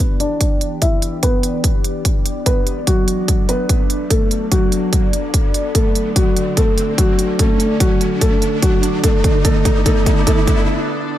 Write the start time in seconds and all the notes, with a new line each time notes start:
Already playing: E3 B3 D4 G4 B4 D5, riser
0.20 D4 D5, closed hi-hat
0.41 kick, closed hi-hat
0.61 closed hi-hat
0.82 E4 E5, kick, closed hi-hat
1.02 closed hi-hat
1.23 B3 B4, kick, closed hi-hat
1.43 closed hi-hat
1.64 kick, closed hi-hat
1.84 closed hi-hat
2.05 kick, closed hi-hat
2.26 closed hi-hat
2.46 F#3 B3 A4 B4, kick, closed hi-hat
2.67 closed hi-hat
2.87 F#3 F#4, kick, closed hi-hat
3.08 closed hi-hat
3.28 kick, closed hi-hat
3.49 B3 B4, closed hi-hat
3.69 kick, closed hi-hat
3.90 closed hi-hat
4.10 A3 A4, kick, closed hi-hat
4.31 closed hi-hat
4.52 F#3 F#4, kick, closed hi-hat
4.72 closed hi-hat
4.93 kick, closed hi-hat
5.13 closed hi-hat
5.34 kick, closed hi-hat
5.54 closed hi-hat
5.75 D3 A3 A4, kick, closed hi-hat
5.95 closed hi-hat
6.16 F#3 F#4, kick, closed hi-hat
6.37 closed hi-hat
6.57 A3 A4, kick, closed hi-hat
6.78 closed hi-hat
6.98 F#3 F#4, kick, closed hi-hat
7.19 closed hi-hat
7.39 A3 A4, kick, closed hi-hat
7.60 closed hi-hat
7.80 F#3 F#4, kick, closed hi-hat
8.01 closed hi-hat
8.21 A3 A4, kick, closed hi-hat
8.42 closed hi-hat
8.62 F#3 F#4, kick, closed hi-hat
8.83 closed hi-hat
9.04 A3 B3 D4 A4 D5, kick, closed hi-hat
9.24 kick, closed hi-hat
9.45 A3 A4, kick, closed hi-hat
9.65 kick, closed hi-hat
9.86 A3 A4, kick, closed hi-hat
10.06 kick, closed hi-hat
10.27 A3 A4, kick, closed hi-hat
10.47 kick, closed hi-hat